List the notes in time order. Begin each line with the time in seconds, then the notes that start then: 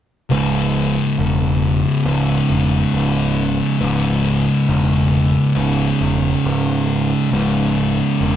0.30 C#1 C#2 G#2 C#3
1.18 E1
2.04 C#1 C#2 G#2 C#3
2.49 E1
2.93 C#1
3.79 C#1 C#2 G#2 C#3
4.68 E1
5.55 C#1 C#2 G#2 C#3
6.00 E1
6.45 C#1
7.32 C#1 C#2 G#2 C#3
8.20 E1